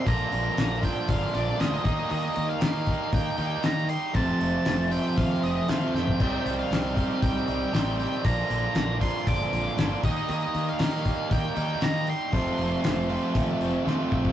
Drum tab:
CC |----------------|----------------|----------------|x---------------|
HH |o-o-o-o-o-o-o-o-|o-o-o-o-o-o-o-o-|o-o-o-o-o-o-o---|--o-o-o-o-o-o-o-|
SD |----o-------o---|----o-------o---|----o-------o-o-|----o-------o---|
FT |----------------|----------------|---------------o|----------------|
BD |o-----o-o-----o-|------o-o-------|o-------o-------|o-----o-o-------|

CC |----------------|----------------|----------------|
HH |o-o-o-o-o-o-o-o-|o-o-o-o-o-o-o-o-|o-o-o-o-o-o-----|
SD |----o-------o---|----o-------o---|----o-------o---|
FT |----------------|----------------|----------------|
BD |o-----o-o-----o-|------o-o-------|o-------o-----oo|